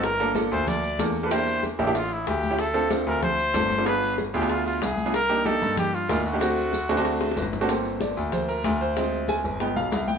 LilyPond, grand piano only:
\new Staff \with { instrumentName = "Grand piano" } { \clef bass \time 4/4 \key g \minor \tempo 4 = 188 g,,4. d,4. e,4~ | e,4. a,,4. d,4~ | d,4. d,4. g,,4~ | g,,4. d,4. c,4~ |
c,4. g,4. d,4~ | d,4. d,4. g,,4~ | g,,4. d,4. d,4~ | d,4. g,,4 b,,8 c,4 | }